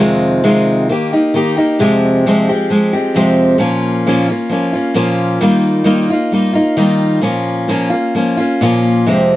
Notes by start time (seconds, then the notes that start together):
Already playing: F2 C3
0.00 D#3 G#3 C4 F4
0.43 F2 C3 D#3 G#3 C4 F4
0.89 D#3 A#3 D#4 G4
1.13 A#3 D#4 G4
1.34 D#3 A#3 D#4 G4
1.57 A#3 D#4 G4
1.79 F2 C3 F3 G#3 C4 G4
2.26 F2 C3 F3 G#3 C4 G4
2.49 F3 G#3 C4 G4
2.70 F3 G#3 C4 G4
2.93 F3 G#3 C4 G4
3.15 F2 C3 F3 G#3 C4 G4
3.58 A#2 F3 A#3 C#4 F4
4.06 A#2 F3 A#3 C#4 F4
4.29 A#3 C#4 F4
4.49 F3 A#3 C#4 F4
4.73 A#3 C#4 F4
4.94 A#2 F3 A#3 C#4 F4
5.41 D#3 G3 A#3 D#4 F4
5.84 D#3 G3 A#3 D#4 F4
6.10 A#3 D#4 F4
6.32 G3 A#3 D#4 F4
6.53 A#3 D#4 F4
6.77 D#3 G3 A#3 D#4 F4
7.22 A#2 F3 A#3 C#4 F4
7.68 A#2 F3 A#3 C#4 F4
7.90 A#3 C#4 F4
8.15 F3 A#3 C#4 F4
8.37 A#3 C#4 F4
8.61 A#2 F3 A#3 C#4 F4
9.06 F2 C3 F3 G#3 C4 G4